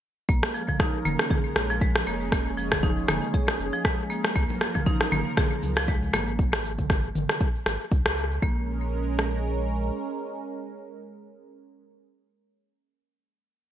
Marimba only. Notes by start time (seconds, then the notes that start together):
0.29 A#3
0.54 F3
0.68 F3
0.80 D#4
1.05 A#3
1.31 G#4
1.70 F3
1.81 G#3
2.07 A#3
2.32 A#3
2.58 F3
2.72 F3
2.83 D#4
3.08 A#3
3.34 G#4
3.73 F3
3.85 G#3
4.10 A#3
4.35 A#3
4.61 F3
4.75 F3
4.86 D#4
5.12 A#3
5.37 G#4
5.77 F3
5.88 G#3
6.14 A#3
8.42 A#3